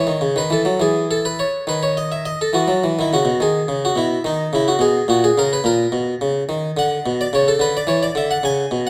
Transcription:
0.00 0.31 C#5 medium
0.07 0.21 D#3 soft
0.21 0.35 C#3 soft
0.36 0.50 D#3 soft
0.36 0.51 B4 medium
0.50 0.64 E3 soft
0.50 0.76 A4 medium
0.65 0.79 F#3 soft
0.80 1.42 E3 soft
0.80 1.05 G#4 medium
1.11 1.24 A4 medium
1.25 1.39 B4 medium
1.39 1.63 C#5 medium
1.67 2.30 D#3 soft
1.67 1.82 B4 medium
1.83 1.96 C#5 medium
1.97 2.11 D#5 medium
2.12 2.25 E5 medium
2.26 2.40 D#5 medium
2.41 2.55 A4 medium
2.53 2.67 E3 soft
2.53 2.91 F#4 medium
2.68 2.82 F#3 soft
2.84 2.97 E3 soft
2.99 3.11 D#3 soft
2.99 3.13 E4 medium
3.13 3.26 C#3 soft
3.13 3.37 F#4 medium
3.25 3.39 B2 soft
3.40 3.61 D#3 soft
3.40 3.84 G#4 medium
3.68 3.89 C#3 soft
3.85 3.98 F#4 medium
3.96 4.16 B2 soft
3.96 4.21 E4 medium
4.24 4.45 D#3 soft
4.24 4.54 D#4 medium
4.53 4.73 C#3 soft
4.53 4.68 E4 medium
4.68 4.82 F#4 medium
4.79 5.00 B2 soft
4.79 5.05 G#4 medium
5.08 5.29 A#2 soft
5.08 5.23 F#4 medium
5.24 5.38 G#4 medium
5.38 5.57 C#3 soft
5.38 5.52 A#4 medium
5.53 5.66 B4 medium
5.64 5.85 A#2 soft
5.64 5.94 A#4 medium
5.92 6.13 B2 soft
6.21 6.42 C#3 soft
6.49 6.69 D#3 soft
6.77 6.97 D3 medium
6.77 7.13 F#5 medium
7.06 7.25 B2 medium
7.21 7.34 D5 medium
7.33 7.53 C#3 medium
7.33 7.48 C#5 medium
7.48 7.61 A4 medium
7.59 7.80 D3 medium
7.59 7.75 B4 medium
7.77 7.89 D5 medium
7.87 8.07 E3 medium
7.87 8.02 C#5 medium
8.03 8.16 D5 medium
8.15 8.36 D3 medium
8.15 8.31 E5 medium
8.31 8.44 F#5 medium
8.43 8.64 C#3 medium
8.43 8.80 G#5 loud
8.71 8.90 B2 medium

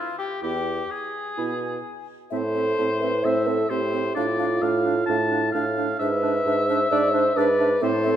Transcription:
0.00 0.18 F4 medium
0.00 0.18 F5 medium
0.19 0.42 G4 medium
0.19 0.25 G5 medium
0.42 0.83 E2 medium
0.42 0.60 B3 soft
0.42 0.59 E4 medium
0.42 0.92 G4 medium
0.42 0.89 G5 medium
0.90 2.09 G#4 medium
0.90 2.07 G#5 medium
1.37 1.77 B2 medium
1.37 1.54 B3 medium
1.37 1.54 E4 medium
2.30 2.73 A2 medium
2.30 2.43 C4 medium
2.30 3.03 A4 loud
2.30 3.26 C5 medium
2.30 2.36 E5 medium
2.54 2.66 C4 medium
2.54 2.60 E5 medium
2.77 3.19 A2 medium
2.77 2.90 C4 medium
2.77 2.83 E5 medium
3.01 3.13 C4 medium
3.01 3.24 B4 loud
3.01 3.07 E5 medium
3.22 3.65 A2 medium
3.22 3.35 C4 medium
3.22 3.49 C5 loud
3.22 3.28 E5 medium
3.22 3.71 E5 medium
3.46 3.57 C4 medium
3.46 3.69 A4 loud
3.46 3.52 E5 medium
3.70 4.11 A2 medium
3.70 3.81 C4 medium
3.70 4.16 G4 loud
3.70 4.14 C5 medium
3.70 3.76 E5 medium
3.93 4.04 C4 medium
3.93 3.99 E5 medium
4.15 4.57 A2 medium
4.15 4.26 D4 medium
4.15 5.74 F4 loud
4.15 4.63 D5 medium
4.15 4.22 F5 medium
4.39 4.49 D4 medium
4.39 4.45 F5 medium
4.62 5.03 A2 medium
4.62 4.73 D4 medium
4.62 5.06 F5 medium
4.62 4.68 F5 medium
4.85 4.96 D4 medium
4.85 4.92 F5 medium
5.06 5.49 A2 medium
5.06 5.18 D4 medium
5.06 5.16 F5 medium
5.06 5.51 A5 loud
5.31 5.41 D4 medium
5.31 5.38 F5 medium
5.52 5.94 A2 medium
5.52 5.65 D4 medium
5.52 5.98 F5 medium
5.52 5.61 F5 medium
5.77 5.87 D4 medium
5.77 5.84 F5 medium
5.99 6.40 G#2 medium
5.99 6.10 D4 medium
5.99 6.70 B4 loud
5.99 7.38 E5 loud
5.99 6.07 E5 medium
6.23 6.33 D4 medium
6.23 6.31 E5 medium
6.45 6.86 G#2 medium
6.45 6.56 D4 medium
6.45 6.54 E5 medium
6.69 6.80 D4 medium
6.69 6.91 C5 loud
6.69 6.75 E5 medium
6.91 7.31 G#2 loud
6.91 7.02 D4 medium
6.91 7.15 D5 loud
6.91 6.98 E5 medium
7.13 7.24 D4 medium
7.13 7.35 C5 loud
7.13 7.20 E5 medium
7.36 7.77 G#2 medium
7.36 7.47 D4 medium
7.36 7.84 B4 loud
7.36 7.82 D5 medium
7.36 7.44 E5 medium
7.59 7.70 D4 medium
7.59 7.66 E5 medium
7.81 8.16 A2 loud
7.81 7.92 C4 medium
7.81 8.16 A4 loud
7.81 8.16 C5 loud
7.81 7.87 E5 medium
8.03 8.16 C4 medium
8.03 8.09 E5 medium

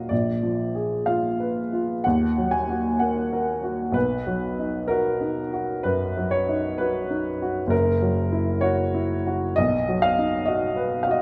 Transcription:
0.00 0.13 A#2 soft
0.00 0.13 F#3 soft
0.00 0.13 F#4 soft
0.00 0.14 A#4 soft
0.00 0.13 D#5 medium
0.00 0.14 F5 medium
0.09 2.00 A#1 soft
0.09 1.06 D5 medium
0.43 0.94 F3 soft
0.75 1.27 G#4 soft
1.06 1.59 F4 soft
1.06 2.04 F5 medium
1.40 1.92 B4 soft
1.73 2.05 F4 soft
2.04 3.92 D#2 soft
2.04 2.53 F#5 medium
2.38 2.88 F#3 soft
2.51 3.00 G#5 medium
2.70 3.20 F#4 soft
2.99 3.51 A#3 soft
2.99 3.95 F#5 medium
3.33 3.83 A#4 soft
3.63 3.95 F#4 soft
3.92 5.79 B1 soft
3.92 4.89 B4 medium
4.27 4.77 F#3 soft
4.59 5.09 D#4 soft
4.88 5.40 F#4 soft
4.88 5.83 A#4 medium
5.21 5.72 D#4 soft
5.53 6.04 F#4 soft
5.83 6.35 F#2 soft
5.83 6.31 B4 medium
6.17 6.67 F#3 soft
6.31 6.79 C#5 medium
6.49 6.99 D#4 soft
6.78 7.30 F#4 soft
6.78 7.71 B4 medium
7.10 7.60 D#4 soft
7.42 7.72 F#4 soft
7.67 9.52 F#1 medium
7.67 8.63 A#4 medium
8.02 8.52 F#3 soft
8.32 8.82 E4 soft
8.61 9.14 F#4 medium
8.61 9.56 C#5 medium
8.95 9.45 E4 soft
9.27 9.58 F#4 soft
9.56 11.22 B1 medium
9.56 10.03 D#5 medium
9.89 10.36 F#3 soft
10.02 10.47 F5 medium
10.19 10.65 D#4 soft
10.46 10.95 F#4 soft
10.46 11.02 D#5 medium
10.76 11.22 B4 soft
11.03 11.22 F#4 soft
11.03 11.11 F5 medium
11.11 11.20 D#5 medium

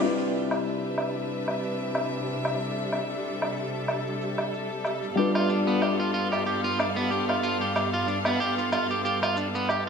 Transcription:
0.00 5.13 C3 medium
0.00 5.13 G3 medium
0.00 9.89 G3 medium
0.00 5.14 C4 medium
0.00 5.13 D4 medium
0.00 5.14 E4 medium
0.00 2.57 B4 medium
0.00 5.15 B4 medium
0.00 5.13 E5 medium
0.00 cabasa soft
0.00 low woodblock medium
0.20 cabasa soft
0.34 cabasa medium
0.51 cabasa soft
0.51 low woodblock medium
0.66 cabasa medium
0.84 cabasa soft
0.98 cabasa medium
0.98 low woodblock medium
1.17 cabasa soft
1.31 cabasa medium
1.48 cabasa soft
1.48 low woodblock medium
1.64 cabasa medium
1.81 cabasa soft
1.95 cabasa soft
1.95 low woodblock medium
2.28 cabasa medium
2.45 cabasa soft
2.45 low woodblock medium
2.59 9.89 A4 medium
2.59 cabasa soft
2.78 cabasa soft
2.92 cabasa medium
2.92 low woodblock medium
3.10 cabasa medium
3.24 cabasa medium
3.42 cabasa soft
3.42 low woodblock medium
3.57 cabasa medium
3.75 cabasa soft
3.88 cabasa medium
3.88 low woodblock medium
4.07 cabasa soft
4.22 cabasa medium
4.38 cabasa soft
4.38 low woodblock medium
4.54 cabasa medium
4.85 cabasa medium
4.85 low woodblock medium
5.04 cabasa soft
5.16 9.89 G2 medium
5.16 9.89 G3 medium
5.16 9.89 B3 medium
5.16 9.89 D4 medium
5.16 9.89 F4 medium
5.16 5.33 G4 medium
5.16 9.89 B4 medium
5.16 9.89 F5 medium
5.16 cabasa soft
5.35 5.48 F4 medium
5.35 cabasa soft
5.35 low woodblock medium
5.49 5.59 D4 medium
5.49 cabasa medium
5.67 5.80 B3 medium
5.67 cabasa soft
5.82 5.99 G4 medium
5.82 cabasa soft
5.82 low woodblock medium
6.00 6.13 F4 medium
6.00 cabasa soft
6.14 6.30 F4 medium
6.14 cabasa medium
6.32 6.45 G4 medium
6.32 cabasa soft
6.32 low woodblock medium
6.46 6.63 G4 medium
6.46 cabasa medium
6.64 6.77 F4 medium
6.64 cabasa soft
6.79 6.88 D4 medium
6.79 cabasa medium
6.79 low woodblock medium
6.96 7.09 B3 medium
6.96 cabasa soft
7.11 7.28 G4 medium
7.11 cabasa medium
7.29 7.42 F4 medium
7.29 low woodblock medium
7.43 7.59 F4 medium
7.43 cabasa medium
7.61 7.74 G4 medium
7.61 cabasa soft
7.76 7.92 G4 medium
7.76 cabasa medium
7.76 low woodblock medium
7.94 8.06 F4 medium
7.94 cabasa soft
8.08 8.17 D4 medium
8.08 cabasa medium
8.25 8.39 B3 medium
8.25 cabasa soft
8.25 low woodblock medium
8.40 8.57 G4 medium
8.40 cabasa medium
8.58 8.71 F4 medium
8.58 cabasa soft
8.72 8.88 F4 medium
8.72 cabasa medium
8.72 low woodblock medium
8.90 9.03 G4 medium
8.90 cabasa soft
9.05 9.21 G4 medium
9.05 cabasa medium
9.23 9.36 F4 medium
9.23 cabasa soft
9.23 low woodblock medium
9.37 9.47 D4 medium
9.37 cabasa medium
9.55 9.68 B3 medium
9.55 cabasa soft
9.69 9.86 G4 medium
9.69 cabasa soft
9.69 low woodblock medium

